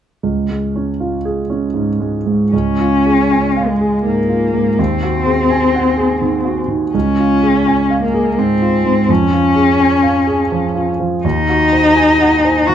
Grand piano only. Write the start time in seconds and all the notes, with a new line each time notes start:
0.23 C#2
0.50 G#3
0.76 C#4
1.00 F4
1.25 G#4
1.50 C#4
1.74 G#2
2.00 G#3
2.26 G#2
2.53 C#2
2.81 F4
3.06 G#4
3.31 G#5
3.56 F5
3.81 G#4
4.06 G#2
4.29 F4
4.53 G#2
4.79 D#2
5.03 F#4
5.26 G#4
5.50 G#5
5.75 F#5
5.98 G#4
6.21 D#3
6.45 F#4
6.68 D#3
6.94 C#2
7.20 F4
7.43 G#4
7.67 G#5
7.90 F5
8.14 G#4
8.38 G#2
8.62 F4
8.85 G#2
9.09 F2
9.33 F4
9.56 G#4
9.80 G#5
10.03 F5
10.27 G#4
10.52 F3
10.75 F4
11.00 F3
11.24 D#2
11.49 F#4
11.73 C5
11.96 G#5
12.21 F#5
12.45 C5
12.69 D#3